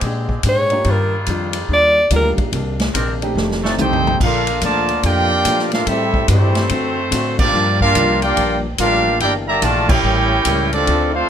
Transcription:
Already playing: D3 G#3 C4 G4
0.01 A#2 G#3, kick, ride
0.06 D4 G4
0.29 kick
0.43 G#2 A#2 G#3 D4 G4, kick, hi-hat pedal, ride
0.49 C#5
0.70 A#3 D4 D#4 F4 G4, ride
0.84 G2 D#3 G3 D4 F4, kick, ride
0.89 D4 F4 A#4
1.26 F2 D#3 G3 D4, kick, hi-hat pedal, ride
1.30 F4
1.53 ride
1.69 D#2 D#3 G3 D4, kick
1.73 F4 D5
2.10 D2 D#3 G3 A#3 D4 D#4 F4 G4, kick, hi-hat pedal, ride
2.16 A#4
2.38 muted upright bass stroke, kick, ride
2.52 C2 C3 D#3 A#3, kick, ride
2.56 D4
2.80 snare, ride
2.93 A#1 C3 D#3 A#3 C4 D4 A#4, kick, hi-hat pedal, ride
2.97 D4
3.21 A3 C4 D4 D#4 G4, ride
3.35 F1 F2 D#3 A3, snare
3.40 D4
3.51 snare
3.63 D#3 A3 C4 D4 D#4 A4 D5, snare
3.77 C2 F2 D#3 A3 C4 D4 D#4 G4 C5, hi-hat pedal, mid tom
3.82 D#4 A4 G5
3.93 floor tom
4.07 floor tom
4.20 A#1 A#2 F3 A3 A#3 D4 F4 A4 F5, kick, crash
4.24 A#4
4.47 ride
4.61 D2 A#2 D3 F3 A3 A#3 D4 F4 A#4 D5 A5, kick, hi-hat pedal, ride
4.89 ride
5.03 F2 A#2 F3 A3 A#3 D4 F4 G4 A#4 D5 G5, kick, ride
5.45 A#2 F3 A3 D4, kick, hi-hat pedal, ride
5.59 snare
5.72 A3 D4 F4 A4 A#4 F5, snare, ride
5.87 A2 G3 C4 E4 G4 A4 E5, kick, ride
6.14 kick
6.28 G2 A2 E3 G3 A3 C4 E4 G4 C5, kick, hi-hat pedal, ride
6.55 snare, ride
6.69 F#2 D3 A3 C4 F#4, kick, ride
7.11 A2 D3 A3 C4 F#4, kick, hi-hat pedal, ride
7.39 F3 A#3 D4 F4 G4 D5, kick, crash
7.52 G2 F3 A#3
7.57 D4
7.81 A#3 D4 F4 G4 A#4 F5, kick
7.95 C2 G2 F3 A#3 D4, kick, hi-hat pedal, ride
8.22 A#3 D4 F4 G4 A#4 D5 G5, ride
8.36 A#1 G2 F3 A#3 D4, kick, ride
8.78 A1 G2 F3 A#3 D4 F4 G4 A#4 F5, kick, hi-hat pedal, ride
9.20 G1 E3 A#3 D4 E4 G4 A#4 D5 G5, kick, ride
9.24 G4
9.47 D3 G3 A#3 G4 D5 E5 A#5
9.62 A#1 E3 A3 A#3 D4 F4 G4 A#4 D5 A5, kick, hi-hat pedal, ride
9.89 C#4 E4 G4 A#4 C#5 G5, kick, crash
10.03 A1 A2 G3 A#3 C#4
10.45 C#2 A2 G3 A#3 C#4, kick, hi-hat pedal, ride
10.73 F3 A3 C4 D4 F4 A4 D5, ride
10.86 D2 D3 A3 C4 F4, kick, ride
11.14 A3 C4 D4 F4 A4 C5 F5

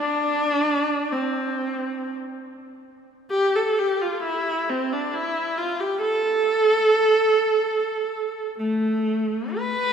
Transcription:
0.00 D4
1.12 C4
3.31 G4
3.55 A4
3.79 G4
4.02 F4
4.23 E4
4.70 C4
4.93 D4
5.14 E4
5.58 F4
5.80 G4
6.02 A4
8.59 A3
9.56 B4

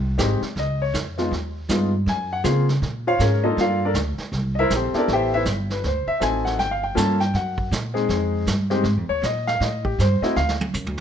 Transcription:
Already playing: C2
0.18 G#1 G#3 C4 D#4 G4, kick, snare, hi-hat pedal
0.41 muted upright bass stroke, snare
0.56 C#2 D#5, brush sweep, kick, snare
0.82 C#5
0.94 F2, kick, snare, hi-hat pedal
1.18 G#3 B3 D#4 F4, snare
1.31 D#2, brush sweep, kick, snare
1.69 G2 G#3 B3 D#4 F4, kick, snare, hi-hat pedal
2.06 F#2 G#5, brush sweep, kick, snare
2.33 F#5
2.44 C#3 A#3 C4 F4 G#4, kick, snare, hi-hat pedal
2.69 snare
2.82 A#2, brush sweep, kick, snare
3.07 F4 C5 C#5 F5
3.17 G#2 C#4 G#4 A#4 C5 C#5, kick, snare, hi-hat pedal
3.43 A#3 D4 D#4 F4 A4 D#5
3.57 G2 F4 A#4 F5, brush sweep, kick, snare
3.61 D5
3.85 D4 A4 A#4 D5
3.94 D2, kick, snare, hi-hat pedal
4.18 muted upright bass stroke, snare
4.32 C2, brush sweep, kick, snare
4.55 D#5 E5
4.59 E4 A#4 C5
4.70 A#1, kick, snare, hi-hat pedal
4.75 C4 G4 A4 C5
4.93 B3 E4 G4 A4, muted upright bass stroke, snare
4.97 D4 A#4 D5
5.08 A1, brush sweep, kick, snare
5.13 G4 C5 E5 G5
5.34 E4 B4 C5 E5
5.45 G1, kick, snare, hi-hat pedal
5.70 B4, snare
5.84 D2 C5, brush sweep, kick, snare
6.07 E5, muted upright bass stroke
6.20 A1 C4 D#4 F#4 A4 G#5, kick, snare, hi-hat pedal
6.45 F#5, snare
6.59 G1 G5, brush sweep, kick, snare
6.71 F5
6.83 G5
6.95 G2 A#3 C#4 F4 A4 A5, kick, snare, hi-hat pedal
7.20 G5, snare
7.34 F#2 F#5, brush sweep, kick, snare
7.58 kick
7.71 A#2, kick, snare, hi-hat pedal
7.94 G#3 C4 D#4 G#4, snare
8.09 F2, brush sweep, kick, snare
8.47 G2, kick, snare, hi-hat pedal
8.70 G#3 C4 D#4 G4, snare
8.84 G#2, brush sweep, kick, snare
8.97 F2
9.09 D#2 C#5
9.22 A#2 D#5, kick, snare, hi-hat pedal
9.47 F5, snare
9.60 A2 D#5, brush sweep, kick, snare
9.85 G4, kick
9.99 G2 C5, kick, snare, hi-hat pedal
10.21 A3 C4 E4 F#4 D#5, muted upright bass stroke, snare
10.36 D2 F5, snare
10.49 snare
10.61 high tom
10.74 F#2, floor tom, hi-hat pedal
10.86 D2, floor tom
10.97 floor tom

